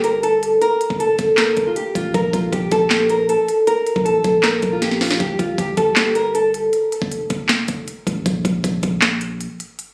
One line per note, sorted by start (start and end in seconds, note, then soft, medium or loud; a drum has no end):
0.00 0.58 G1 loud
0.00 0.20 A#4 medium
0.00 closed hi-hat medium
0.23 0.40 A4 medium
0.23 closed hi-hat medium
0.43 closed hi-hat medium
0.61 0.97 A#4 loud
0.61 closed hi-hat medium
0.81 closed hi-hat medium
0.90 1.18 F1 loud
0.90 kick medium
1.00 1.36 A4 medium
1.00 closed hi-hat medium
1.19 1.56 F1 loud
1.19 kick loud
1.19 closed hi-hat medium
1.37 1.65 A#4 loud
1.37 snare loud
1.37 clap medium
1.37 closed hi-hat medium
1.57 1.75 F1 loud
1.57 kick loud
1.57 closed hi-hat medium
1.67 1.75 F4 medium
1.76 1.93 G4 medium
1.76 closed hi-hat medium
1.95 2.14 A1 loud
1.95 2.12 F4 medium
1.95 kick medium
1.95 closed hi-hat medium
2.14 2.33 A#1 loud
2.14 2.31 A#4 medium
2.14 kick loud
2.14 closed hi-hat medium
2.33 2.52 A#1 loud
2.33 2.50 F4 medium
2.33 kick medium
2.33 closed hi-hat medium
2.52 2.71 A#1 loud
2.52 2.69 G4 medium
2.52 kick loud
2.52 closed hi-hat medium
2.71 3.36 A#1 loud
2.71 2.88 A4 medium
2.71 kick loud
2.71 closed hi-hat medium
2.90 3.07 G4 medium
2.90 snare loud
2.90 clap medium
2.90 closed hi-hat medium
3.10 3.26 A#4 medium
3.10 closed hi-hat medium
3.29 3.46 A4 medium
3.29 closed hi-hat medium
3.48 closed hi-hat medium
3.67 4.03 A#4 loud
3.67 closed hi-hat medium
3.87 closed hi-hat medium
3.96 4.16 A#1 loud
3.96 kick medium
4.05 4.41 A4 medium
4.05 closed hi-hat medium
4.15 4.24 A1 loud
4.24 4.61 A#1 loud
4.24 kick loud
4.24 closed hi-hat medium
4.43 4.71 A#4 loud
4.43 snare loud
4.43 clap medium
4.43 closed hi-hat loud
4.62 5.18 A#1 loud
4.62 kick loud
4.62 closed hi-hat medium
4.72 4.81 F4 medium
4.82 4.98 G4 medium
4.82 snare medium
4.82 closed hi-hat medium
4.91 snare medium
5.01 5.17 F4 medium
5.01 snare medium
5.01 open hi-hat medium
5.11 snare medium
5.20 5.38 G1 loud
5.20 5.37 G4 medium
5.20 kick loud
5.20 closed hi-hat medium
5.39 5.57 G1 loud
5.39 5.56 F4 medium
5.39 kick loud
5.39 closed hi-hat medium
5.58 5.77 G1 loud
5.58 5.75 G4 medium
5.58 kick loud
5.58 closed hi-hat medium
5.77 6.69 G1 loud
5.77 5.94 A4 medium
5.77 kick medium
5.77 closed hi-hat medium
5.96 6.13 G4 medium
5.96 snare loud
5.96 clap medium
5.96 closed hi-hat medium
6.15 6.32 A#4 medium
6.15 closed hi-hat medium
6.35 6.51 A4 medium
6.35 closed hi-hat medium
6.54 closed hi-hat medium
6.73 closed hi-hat medium
6.92 closed hi-hat medium
7.02 7.29 F1 loud
7.02 kick loud
7.12 closed hi-hat medium
7.30 7.67 F1 loud
7.30 kick loud
7.30 closed hi-hat medium
7.49 snare loud
7.49 clap medium
7.49 closed hi-hat medium
7.68 7.87 F1 loud
7.68 kick loud
7.68 closed hi-hat medium
7.88 closed hi-hat medium
8.07 8.25 A1 loud
8.07 kick medium
8.07 closed hi-hat medium
8.26 8.44 A#1 loud
8.26 kick loud
8.26 closed hi-hat medium
8.45 8.63 A#1 loud
8.45 kick loud
8.45 closed hi-hat medium
8.64 8.82 A#1 loud
8.64 kick loud
8.64 closed hi-hat medium
8.83 9.47 A#1 loud
8.83 kick loud
8.83 closed hi-hat medium
9.02 snare loud
9.02 clap medium
9.02 closed hi-hat medium
9.21 closed hi-hat medium
9.41 closed hi-hat medium
9.60 closed hi-hat medium
9.79 closed hi-hat medium